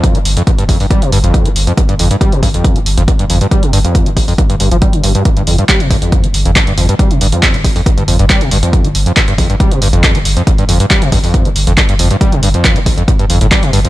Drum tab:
HH |xxoxxxooxxoxxxox|xxoxxxoxxxoxxxox|xxoxxxooxxoxxxox|xxoxxxoxxxoxxxox|
CP |----------------|----------------|----------------|----x-------x---|
BD |o---o-o-o---o---|o---o-o-o---o---|o---o-o-o---o---|o---o-o-o---o---|

HH |xxoxxxooxxoxxxox|xxoxxxoxxxoxxxox|xxoxxxooxxoxxxox|xxoxxxoxxxoxxxox|
CP |----x-------x---|----x-------x---|----x-------x---|----x-------x---|
BD |o---o-o-o---o---|o---o-o-o---o---|o---o-o-o---o---|o---o-o-o---o---|